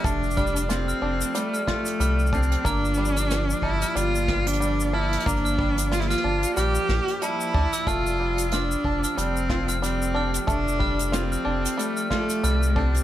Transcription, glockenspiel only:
X:1
M:4/4
L:1/16
Q:"Swing 16ths" 1/4=92
K:F
V:1 name="Glockenspiel"
z2 f' z2 f' z3 f' z2 f' z3 | f' z2 f' z3 f' z2 f' z3 f' z | z f' z3 f' z2 f' z3 a z2 e' | f' z3 f' z2 f' z3 f' z2 f' z |
z2 f' z2 f' z3 f' z2 f' z3 |]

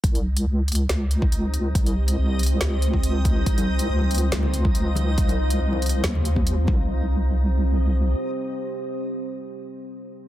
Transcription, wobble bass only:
X:1
M:4/4
L:1/8
Q:1/4=140
K:Cphr
V:1 name="Wobble bass" clef=bass
C,,2 D,,2 D,,4 | C,,2 C,,2 D,,4 | C,,2 D,,2 D,,4 | C,,2 C,,2 E,,3 C,,- |
C,,6 z2 | z8 |]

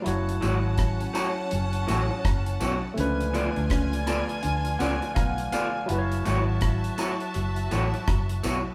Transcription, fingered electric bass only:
X:1
M:4/4
L:1/16
Q:"Swing 16ths" 1/4=82
K:F#m
V:1 name="Fingered electric bass" clef=bass
F,,,2 G,,,4 z2 F,,,2 A,,, z F,,,2 B,,, z | C,,3 D,, C,,3 z D,,2 C,, z B,,,2 z2 | F,,,2 G,,,4 z2 F,,,2 A,,, z F,,,2 B,,, z |]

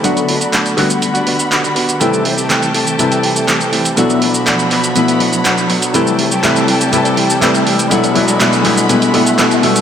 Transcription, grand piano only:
X:1
M:4/4
L:1/8
Q:1/4=122
K:Ador
V:1 name="Grand piano"
[D,F,A,B,F]3 [D,G,A,B,F]4- [D,G,A,B,F] | [C,G,A,EB]4 [C,G,A,EB]4 | [B,,F,A,B,E]4 [B,,A,B,E]4 | [C,G,A,EB]2 [C,G,A,EB]2 [C,G,A,EB]2 [C,G,A,EB]2 |
[B,,F,A,B,E] [B,,F,A,B,E] [B,,F,A,B,E] [B,,G,A,B,E] [B,,G,A,B,E] [B,,G,A,B,E] [B,,G,A,B,E] [B,,G,A,B,E] |]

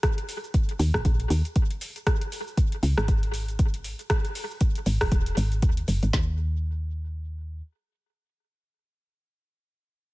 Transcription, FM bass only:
X:1
M:4/4
L:1/16
Q:"Swing 16ths" 1/4=118
K:Abdor
V:1 name="FM bass" clef=bass
z6 E,, B,,, B,,,2 E,, z4 z | z6 D,, A,,,8 z | z6 A,,, E,,, E,,,2 A,,,2 E,,2 G,,, A,,, | E,,12 z4 |
z16 |]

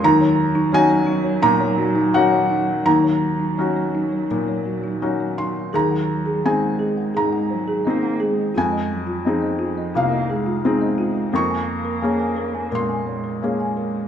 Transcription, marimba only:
X:1
M:4/4
L:1/16
Q:1/4=86
K:Ebdor
V:1 name="Marimba"
E d z E d d E d E d G E B d E z | E d z E d d E d E d G E B d E z | A g z A g g A g A g c A e g A z | F e z F e e F e F e A F c e F z |
B a z B a a B a B a d B f a B z |]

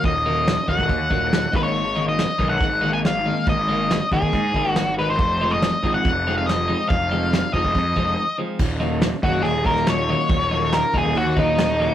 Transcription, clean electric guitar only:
X:1
M:4/4
L:1/8
Q:1/4=140
K:Ebm
V:1 name="Clean electric guitar"
[E,G,B,E] [E,G,B,E] z [E,G,B,E] z [E,G,B,E] z [E,A,B,E] | z [E,A,B,E] z [E,A,B,E] z [E,A,B,E] z [E,A,B,E] | z [E,A,B,E] z [E,A,B,E] z [E,A,B,E] z [E,A,B,E] | z [F,A,=CE] z [F,A,CE] z [F,A,CE] z [F,A,CE] |
z [F,A,=CE] z [F,A,CE] z [F,A,CE] z [F,A,CE] | z [E,G,B,E] z [E,G,B,E] z [E,G,B,E] z [E,G,B,E] | z [E,G,B,E] z [E,G,B,E] z [E,G,B,E] z [E,G,B,E] |]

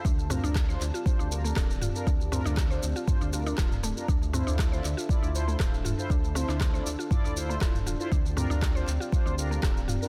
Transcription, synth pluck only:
X:1
M:4/4
L:1/16
Q:"Swing 16ths" 1/4=119
K:Cmix
V:1 name="Synth pluck"
D z C D z c z F z D z A, A z F z | D z C D z c z F z D F D F z A, z | D z C D z c z F z D z A, A z F z | D z C D z c z F z D z A, A z F z |
D z C D z c z F z D z A, A z F z |]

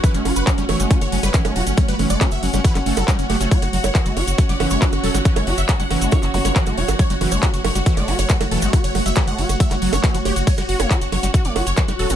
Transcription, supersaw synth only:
X:1
M:4/4
L:1/16
Q:1/4=138
K:F#phr
V:1 name="Supersaw synth"
B C C B C C c C C c C B C C F C | C B C d C e C C B C C A C C G C | c F F c F F c F F d F c F F A F | F c F e F f F F c F F c F F c F |
c F F c F F c F F d F c F F A F | F c F e F f F F e F F c F F c F | c F F c F F c F F d F c F F A F |]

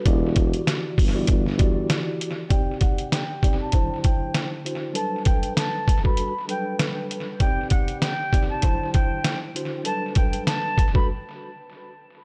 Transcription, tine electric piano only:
X:1
M:4/4
L:1/16
Q:"Swing 16ths" 1/4=98
K:G
V:1 name="Tine electric piano"
[E,EFGd]6 z [E,EFGd]2 z [E,EFGd]6 | [C,C_EGd]4- [C,CEGd] z [C,CEGd]2 [D,F,D=Ec]6 [D,DEFc]2 | [F,G,DAB]6 z [G,DFAB]2 z [F,G,DAB]6 | [C,C_EGd]4- [C,CEGd] z [C,CEGd]2 [D,F,D=Ec]6 [D,DEFc]2 |
[F,G,DAB]6 z [G,DFAB] z8 |]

